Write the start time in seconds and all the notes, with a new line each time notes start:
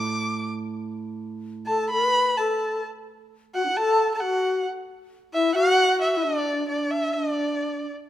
Already playing: A2 D6
1.66 A4 A5
1.90 B4 B5
2.37 A4 A5
3.54 F#4 F#5
3.65 D4 E4
3.72 F#4
3.77 A4 A5
4.14 A4 A5
4.20 F#4 F#5
5.34 E4 E5
5.55 F#4 F#5
6.01 E5
6.17 E4
6.22 D4 D5
6.67 D4 D5
6.91 E5
7.14 D4 D#5
7.31 D5